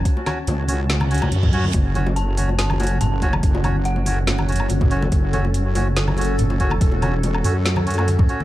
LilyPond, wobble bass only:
\new Staff \with { instrumentName = "Wobble bass" } { \clef bass \time 4/4 \key fis \minor \tempo 4 = 142 r4 cis,2 fis,4 | fis,,2. fis,,4 | fis,,2. fis,,4 | fis,,2. fis,,4 |
e,,4. fis,2 r8 | }